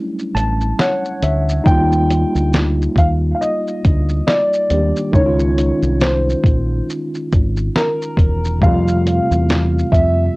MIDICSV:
0, 0, Header, 1, 5, 480
1, 0, Start_track
1, 0, Tempo, 869565
1, 915, Time_signature, 4, 2, 24, 8
1, 5721, End_track
2, 0, Start_track
2, 0, Title_t, "Upright piano"
2, 0, Program_c, 0, 0
2, 438, Note_on_c, 0, 73, 84
2, 919, Note_on_c, 0, 79, 105
2, 930, Note_off_c, 0, 73, 0
2, 1375, Note_off_c, 0, 79, 0
2, 1646, Note_on_c, 0, 77, 90
2, 1691, Note_off_c, 0, 77, 0
2, 1847, Note_on_c, 0, 77, 71
2, 1877, Note_off_c, 0, 77, 0
2, 1883, Note_on_c, 0, 75, 84
2, 2357, Note_on_c, 0, 74, 104
2, 2373, Note_off_c, 0, 75, 0
2, 2814, Note_off_c, 0, 74, 0
2, 2837, Note_on_c, 0, 73, 92
2, 3293, Note_off_c, 0, 73, 0
2, 3321, Note_on_c, 0, 72, 75
2, 3776, Note_off_c, 0, 72, 0
2, 4283, Note_on_c, 0, 70, 100
2, 4763, Note_on_c, 0, 77, 99
2, 4773, Note_off_c, 0, 70, 0
2, 5457, Note_off_c, 0, 77, 0
2, 5476, Note_on_c, 0, 76, 109
2, 5721, Note_off_c, 0, 76, 0
2, 5721, End_track
3, 0, Start_track
3, 0, Title_t, "Tine electric piano"
3, 0, Program_c, 1, 4
3, 0, Control_c, 1, 64, 127
3, 0, Note_on_c, 1, 54, 67
3, 0, Note_on_c, 1, 55, 54
3, 0, Note_on_c, 1, 57, 57
3, 0, Note_on_c, 1, 61, 64
3, 0, Note_on_c, 1, 62, 73
3, 0, Note_on_c, 1, 64, 70
3, 192, Note_on_c, 1, 81, 73
3, 416, Note_off_c, 1, 81, 0
3, 436, Note_on_c, 1, 78, 64
3, 659, Note_off_c, 1, 78, 0
3, 682, Note_on_c, 1, 76, 63
3, 880, Note_off_c, 1, 62, 0
3, 884, Note_off_c, 1, 54, 0
3, 889, Note_off_c, 1, 57, 0
3, 895, Note_off_c, 1, 61, 0
3, 899, Note_off_c, 1, 64, 0
3, 902, Note_off_c, 1, 76, 0
3, 905, Note_on_c, 1, 63, 65
3, 916, Note_off_c, 1, 55, 0
3, 916, Note_on_c, 1, 55, 52
3, 922, Control_c, 1, 64, 0
3, 927, Note_on_c, 1, 58, 57
3, 944, Note_on_c, 1, 65, 70
3, 1004, Control_c, 1, 64, 127
3, 2568, Note_off_c, 1, 63, 0
3, 2573, Note_off_c, 1, 55, 0
3, 2579, Note_off_c, 1, 58, 0
3, 2587, Note_off_c, 1, 65, 0
3, 2594, Note_on_c, 1, 51, 44
3, 2598, Note_on_c, 1, 55, 41
3, 2603, Note_on_c, 1, 58, 41
3, 2608, Note_on_c, 1, 62, 44
3, 2614, Note_on_c, 1, 67, 52
3, 2821, Note_off_c, 1, 51, 0
3, 2828, Note_on_c, 1, 51, 59
3, 2837, Note_off_c, 1, 55, 0
3, 2838, Note_on_c, 1, 56, 51
3, 2839, Note_off_c, 1, 58, 0
3, 2841, Note_off_c, 1, 62, 0
3, 2843, Control_c, 1, 64, 0
3, 2844, Note_off_c, 1, 67, 0
3, 2847, Note_on_c, 1, 63, 54
3, 2857, Note_on_c, 1, 61, 56
3, 2867, Note_on_c, 1, 64, 59
3, 2892, Note_off_c, 1, 64, 0
3, 2904, Note_on_c, 1, 65, 66
3, 2926, Control_c, 1, 64, 127
3, 4729, Note_off_c, 1, 51, 0
3, 4734, Note_off_c, 1, 56, 0
3, 4739, Note_off_c, 1, 63, 0
3, 4744, Note_off_c, 1, 61, 0
3, 4744, Note_on_c, 1, 48, 58
3, 4753, Note_on_c, 1, 55, 55
3, 4762, Note_on_c, 1, 57, 54
3, 4763, Control_c, 1, 64, 0
3, 4767, Note_off_c, 1, 65, 0
3, 4774, Note_on_c, 1, 60, 60
3, 4783, Note_on_c, 1, 65, 72
3, 4848, Control_c, 1, 64, 127
3, 5721, Note_off_c, 1, 48, 0
3, 5721, Note_off_c, 1, 55, 0
3, 5721, Note_off_c, 1, 57, 0
3, 5721, Note_off_c, 1, 60, 0
3, 5721, Note_off_c, 1, 65, 0
3, 5721, End_track
4, 0, Start_track
4, 0, Title_t, "Fingered electric bass"
4, 0, Program_c, 2, 33
4, 191, Note_on_c, 2, 33, 94
4, 393, Note_off_c, 2, 33, 0
4, 675, Note_on_c, 2, 38, 80
4, 875, Note_off_c, 2, 38, 0
4, 917, Note_on_c, 2, 39, 109
4, 1232, Note_off_c, 2, 39, 0
4, 1297, Note_on_c, 2, 38, 87
4, 1580, Note_off_c, 2, 38, 0
4, 1632, Note_on_c, 2, 39, 75
4, 1833, Note_off_c, 2, 39, 0
4, 2124, Note_on_c, 2, 38, 98
4, 2320, Note_off_c, 2, 38, 0
4, 2597, Note_on_c, 2, 39, 88
4, 2712, Note_off_c, 2, 39, 0
4, 2833, Note_on_c, 2, 37, 104
4, 3149, Note_off_c, 2, 37, 0
4, 3214, Note_on_c, 2, 36, 89
4, 3498, Note_off_c, 2, 36, 0
4, 3553, Note_on_c, 2, 34, 84
4, 3754, Note_off_c, 2, 34, 0
4, 4045, Note_on_c, 2, 32, 98
4, 4241, Note_off_c, 2, 32, 0
4, 4512, Note_on_c, 2, 28, 91
4, 4756, Note_on_c, 2, 41, 102
4, 4765, Note_off_c, 2, 28, 0
4, 5071, Note_off_c, 2, 41, 0
4, 5139, Note_on_c, 2, 40, 94
4, 5421, Note_off_c, 2, 40, 0
4, 5476, Note_on_c, 2, 41, 86
4, 5675, Note_off_c, 2, 41, 0
4, 5721, End_track
5, 0, Start_track
5, 0, Title_t, "Drums"
5, 105, Note_on_c, 9, 82, 36
5, 160, Note_off_c, 9, 82, 0
5, 203, Note_on_c, 9, 42, 67
5, 203, Note_on_c, 9, 82, 52
5, 258, Note_off_c, 9, 42, 0
5, 258, Note_off_c, 9, 82, 0
5, 336, Note_on_c, 9, 82, 39
5, 391, Note_off_c, 9, 82, 0
5, 437, Note_on_c, 9, 38, 113
5, 449, Note_on_c, 9, 82, 60
5, 493, Note_off_c, 9, 38, 0
5, 504, Note_off_c, 9, 82, 0
5, 580, Note_on_c, 9, 82, 41
5, 636, Note_off_c, 9, 82, 0
5, 676, Note_on_c, 9, 42, 68
5, 676, Note_on_c, 9, 82, 50
5, 732, Note_off_c, 9, 42, 0
5, 732, Note_off_c, 9, 82, 0
5, 823, Note_on_c, 9, 82, 53
5, 878, Note_off_c, 9, 82, 0
5, 915, Note_on_c, 9, 36, 122
5, 923, Note_on_c, 9, 82, 68
5, 971, Note_off_c, 9, 36, 0
5, 978, Note_off_c, 9, 82, 0
5, 1060, Note_on_c, 9, 82, 55
5, 1115, Note_off_c, 9, 82, 0
5, 1162, Note_on_c, 9, 42, 64
5, 1162, Note_on_c, 9, 82, 43
5, 1217, Note_off_c, 9, 42, 0
5, 1217, Note_off_c, 9, 82, 0
5, 1300, Note_on_c, 9, 82, 50
5, 1355, Note_off_c, 9, 82, 0
5, 1398, Note_on_c, 9, 82, 60
5, 1402, Note_on_c, 9, 38, 108
5, 1453, Note_off_c, 9, 82, 0
5, 1458, Note_off_c, 9, 38, 0
5, 1557, Note_on_c, 9, 82, 43
5, 1612, Note_off_c, 9, 82, 0
5, 1633, Note_on_c, 9, 36, 90
5, 1643, Note_on_c, 9, 42, 59
5, 1643, Note_on_c, 9, 82, 40
5, 1688, Note_off_c, 9, 36, 0
5, 1698, Note_off_c, 9, 42, 0
5, 1698, Note_off_c, 9, 82, 0
5, 1888, Note_on_c, 9, 82, 62
5, 1943, Note_off_c, 9, 82, 0
5, 2028, Note_on_c, 9, 82, 35
5, 2084, Note_off_c, 9, 82, 0
5, 2123, Note_on_c, 9, 42, 66
5, 2123, Note_on_c, 9, 82, 42
5, 2124, Note_on_c, 9, 36, 96
5, 2178, Note_off_c, 9, 42, 0
5, 2178, Note_off_c, 9, 82, 0
5, 2179, Note_off_c, 9, 36, 0
5, 2258, Note_on_c, 9, 82, 41
5, 2313, Note_off_c, 9, 82, 0
5, 2361, Note_on_c, 9, 38, 119
5, 2372, Note_on_c, 9, 82, 64
5, 2416, Note_off_c, 9, 38, 0
5, 2428, Note_off_c, 9, 82, 0
5, 2502, Note_on_c, 9, 82, 43
5, 2558, Note_off_c, 9, 82, 0
5, 2596, Note_on_c, 9, 42, 63
5, 2596, Note_on_c, 9, 82, 49
5, 2651, Note_off_c, 9, 42, 0
5, 2651, Note_off_c, 9, 82, 0
5, 2740, Note_on_c, 9, 82, 52
5, 2795, Note_off_c, 9, 82, 0
5, 2833, Note_on_c, 9, 36, 116
5, 2840, Note_on_c, 9, 82, 66
5, 2889, Note_off_c, 9, 36, 0
5, 2895, Note_off_c, 9, 82, 0
5, 2978, Note_on_c, 9, 82, 54
5, 3033, Note_off_c, 9, 82, 0
5, 3080, Note_on_c, 9, 42, 59
5, 3080, Note_on_c, 9, 82, 43
5, 3136, Note_off_c, 9, 42, 0
5, 3136, Note_off_c, 9, 82, 0
5, 3216, Note_on_c, 9, 82, 46
5, 3271, Note_off_c, 9, 82, 0
5, 3316, Note_on_c, 9, 82, 60
5, 3320, Note_on_c, 9, 38, 117
5, 3371, Note_off_c, 9, 82, 0
5, 3375, Note_off_c, 9, 38, 0
5, 3475, Note_on_c, 9, 82, 44
5, 3530, Note_off_c, 9, 82, 0
5, 3553, Note_on_c, 9, 36, 90
5, 3565, Note_on_c, 9, 42, 54
5, 3565, Note_on_c, 9, 82, 40
5, 3608, Note_off_c, 9, 36, 0
5, 3620, Note_off_c, 9, 42, 0
5, 3620, Note_off_c, 9, 82, 0
5, 3807, Note_on_c, 9, 82, 64
5, 3862, Note_off_c, 9, 82, 0
5, 3944, Note_on_c, 9, 82, 34
5, 4000, Note_off_c, 9, 82, 0
5, 4044, Note_on_c, 9, 36, 96
5, 4044, Note_on_c, 9, 42, 60
5, 4044, Note_on_c, 9, 82, 44
5, 4099, Note_off_c, 9, 36, 0
5, 4099, Note_off_c, 9, 42, 0
5, 4099, Note_off_c, 9, 82, 0
5, 4177, Note_on_c, 9, 82, 41
5, 4232, Note_off_c, 9, 82, 0
5, 4282, Note_on_c, 9, 38, 103
5, 4294, Note_on_c, 9, 82, 62
5, 4337, Note_off_c, 9, 38, 0
5, 4349, Note_off_c, 9, 82, 0
5, 4426, Note_on_c, 9, 82, 43
5, 4481, Note_off_c, 9, 82, 0
5, 4511, Note_on_c, 9, 36, 89
5, 4520, Note_on_c, 9, 42, 67
5, 4520, Note_on_c, 9, 82, 46
5, 4566, Note_off_c, 9, 36, 0
5, 4575, Note_off_c, 9, 42, 0
5, 4575, Note_off_c, 9, 82, 0
5, 4662, Note_on_c, 9, 82, 52
5, 4717, Note_off_c, 9, 82, 0
5, 4757, Note_on_c, 9, 36, 116
5, 4763, Note_on_c, 9, 82, 67
5, 4812, Note_off_c, 9, 36, 0
5, 4818, Note_off_c, 9, 82, 0
5, 4901, Note_on_c, 9, 82, 59
5, 4957, Note_off_c, 9, 82, 0
5, 5005, Note_on_c, 9, 42, 60
5, 5005, Note_on_c, 9, 82, 43
5, 5061, Note_off_c, 9, 42, 0
5, 5061, Note_off_c, 9, 82, 0
5, 5143, Note_on_c, 9, 82, 51
5, 5198, Note_off_c, 9, 82, 0
5, 5241, Note_on_c, 9, 82, 57
5, 5245, Note_on_c, 9, 38, 109
5, 5296, Note_off_c, 9, 82, 0
5, 5300, Note_off_c, 9, 38, 0
5, 5403, Note_on_c, 9, 82, 40
5, 5458, Note_off_c, 9, 82, 0
5, 5476, Note_on_c, 9, 36, 83
5, 5489, Note_on_c, 9, 42, 58
5, 5489, Note_on_c, 9, 82, 42
5, 5532, Note_off_c, 9, 36, 0
5, 5545, Note_off_c, 9, 42, 0
5, 5545, Note_off_c, 9, 82, 0
5, 5721, End_track
0, 0, End_of_file